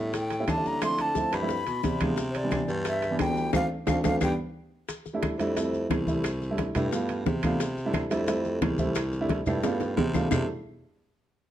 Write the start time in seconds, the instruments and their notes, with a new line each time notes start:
Already playing: baritone saxophone A2, grand piano G3 B3 D4 E4, flute E5
0.14 flute G5, high bongo, high conga, high timbale, maracas
0.30 high bongo, high conga, high timbale, maracas
0.39 grand piano G3 A#3 C#4 E4
0.47 baritone saxophone D3, flute A5, high bongo, low bongo, high conga, high timbale, claves, maracas
0.56 grand piano G3 A#3 C#4 E4
0.65 flute A#5, high conga, maracas
0.81 grand piano F3 A3 C4 E4, flute C6, high bongo, high conga, high timbale, claves, maracas
0.99 flute A5, high bongo, high conga, high timbale, maracas
1.15 grand piano F3 A3 C4 E4, high bongo, high conga, maracas
1.32 baritone saxophone G2, flute B5, high bongo, high conga, high timbale, claves, maracas
1.42 grand piano F3 A3 C4 E4
1.49 high bongo, high conga, maracas
1.66 baritone saxophone B2, high bongo, high conga, high timbale, maracas
1.83 baritone saxophone C3, grand piano D5, high bongo, low bongo, high conga, high timbale, low timbale, maracas
2.00 grand piano F3 G#3 B3 D4, high conga, high timbale, claves, maracas
2.17 high bongo, high conga, maracas
2.29 flute C5
2.34 flute D5, high bongo, high conga, high timbale, maracas
2.43 grand piano E3 G3 B3 D4
2.51 grand piano E3 G3 B3 D4, high bongo, high conga, high timbale, claves, maracas
2.68 baritone saxophone G2, high bongo, high conga, maracas
2.85 flute E5, high bongo, high conga, high timbale, maracas
3.02 high bongo, high conga, high timbale, maracas
3.11 grand piano E3 G3 B3 D4
3.19 baritone saxophone D2, flute G5, high bongo, low bongo, high conga, high timbale, low timbale, claves, maracas
3.28 grand piano E3 G3 B3 D4
3.37 high conga, maracas
3.53 baritone saxophone D2, grand piano A3 C4 D4, flute F5, high bongo, high conga, high timbale, claves, maracas
3.87 baritone saxophone D2, grand piano A3 C4 D4, flute F5, high bongo, high conga, high timbale, claves, maracas
4.04 baritone saxophone D2, grand piano A3 C4 D4, flute F5, high bongo, high conga, high timbale, claves, maracas
4.21 baritone saxophone G2, grand piano G3 B3 D4, flute G5, high bongo, high conga, high timbale, claves, maracas
4.89 high bongo, high conga, high timbale, maracas
5.06 high bongo, high conga, maracas
5.14 grand piano G3 A3 D4 E4
5.23 high bongo, high conga, high timbale, low timbale, claves, maracas
5.39 baritone saxophone F2, grand piano G3 A3 D4 E4, high bongo, high conga, high timbale, maracas
5.56 grand piano G3 A3 C4 E4, high bongo, high conga, high timbale, maracas
5.73 high conga, maracas
5.90 baritone saxophone C2, high bongo, low bongo, high conga, high timbale, low timbale, claves, maracas
6.07 grand piano G3 A3 C4 E4, high bongo, high conga, maracas
6.24 high bongo, high conga, high timbale, claves, maracas
6.41 high bongo, high conga, maracas
6.50 grand piano G3 A3 D4 E4
6.58 high bongo, high conga, high timbale, low timbale, maracas
6.75 baritone saxophone G2, grand piano G3 A3 D4 E4, high bongo, high conga, low conga, high timbale, claves, maracas
6.92 grand piano A3 B3 D4 F4, high bongo, high conga, maracas
7.09 high conga, high timbale, maracas
7.26 baritone saxophone C3, high bongo, low bongo, high conga, low timbale, maracas
7.43 grand piano A3 B3 D4 F4, high bongo, high conga, high timbale, claves, maracas
7.60 high bongo, high timbale, maracas
7.76 high bongo, high conga, maracas
7.85 grand piano G3 A3 D4 E4
7.94 high bongo, high conga, high timbale, low timbale, claves, maracas
8.11 baritone saxophone F2, grand piano G3 A3 D4 E4, high bongo, high conga, high timbale, maracas
8.27 grand piano G3 A3 C4 E4, high bongo, high conga, high timbale, maracas
8.45 high conga, maracas
8.61 baritone saxophone C2, high bongo, low bongo, high conga, high timbale, low timbale, claves, maracas
8.78 grand piano G3 A3 C4 E4, high bongo, high conga, maracas
8.95 high bongo, high conga, high timbale, claves, maracas
9.13 high bongo, high conga, maracas
9.21 grand piano G3 A3 D4 E4
9.29 high bongo, high conga, high timbale, low timbale, maracas
9.46 baritone saxophone G2, grand piano G3 A3 D4 E4, high bongo, high conga, low conga, high timbale, claves, maracas
9.63 grand piano A3 B3 D4 F4, high bongo, high conga, low timbale, maracas
9.80 high bongo, high conga, high timbale, maracas
9.97 baritone saxophone C3, low bongo, high conga, low timbale, maracas
10.14 grand piano A3 B3 D4 F4, low bongo, high conga, low timbale, claves, maracas
10.31 baritone saxophone C3, grand piano G3 A3 D4 E4, low bongo, low conga, low timbale, claves, maracas